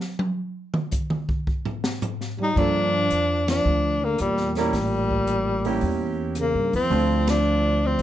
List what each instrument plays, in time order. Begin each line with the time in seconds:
0.01 snare
0.19 high tom
0.74 mid tom
0.91 kick, hi-hat pedal
1.10 mid tom
1.29 kick
1.47 kick
1.65 floor tom
1.84 snare
2.02 floor tom, hi-hat pedal
2.21 snare
2.39 trombone G3, floor tom
2.43 tenor saxophone D#4
2.55 upright bass G2, trombone F3, upright piano A#3 D4 F4 A4, tenor saxophone D4, kick, crash
3.10 upright bass F2, closed hi-hat
3.47 trombone F3, tenor saxophone D4, snare, ride
3.65 upright bass D2
4.03 trombone D3, tenor saxophone A#3
4.18 upright bass E2, trombone A#2, tenor saxophone G3, cross-stick, closed hi-hat
4.37 snare
4.55 trombone A#2, upright piano A#3 C#4 E4 A#4, snare, open hi-hat
4.60 tenor saxophone G3
4.73 upright bass A1, kick, snare, open hi-hat
5.11 kick
5.27 closed hi-hat
5.65 upright piano A#3 C#4 E4 G4, open hi-hat
5.81 upright bass E2, kick, open hi-hat
6.35 trombone C#3, tenor saxophone A#3, cross-stick, closed hi-hat
6.54 upright bass G2
6.73 upright bass E2, trombone F3, tenor saxophone C4, open hi-hat
6.90 upright bass D2, upright piano A3 C4 D4 F4, kick, open hi-hat
7.27 trombone F3, tenor saxophone D4, snare, ride
7.84 trombone F3, tenor saxophone C4
7.99 upright bass A1, kick, open hi-hat